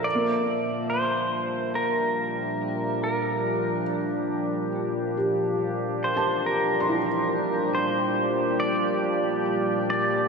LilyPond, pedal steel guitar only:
\new Staff \with { instrumentName = "Pedal steel guitar" } { \time 4/4 \key d \minor \tempo 4 = 70 d''4 c''4 bes'4. bes'8~ | bes'8 r2 r8 c''8 bes'8~ | bes'4 c''4 d''4. d''8 | }